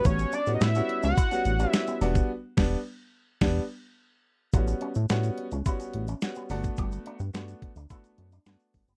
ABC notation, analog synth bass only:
X:1
M:4/4
L:1/16
Q:1/4=107
K:Amix
V:1 name="Analog synth bass" clef=bass
A,,,2 z A,, A,,2 z C,, z2 A,,,2 z2 E,,,2 | z2 E,,,2 z4 E,,,2 z6 | A,,,2 z A,, A,,2 z C,, z2 A,,,2 z2 G,,,2 | G,,,2 z G,, G,,2 z D,, z2 F,,2 G,, z G,,, F,,, |]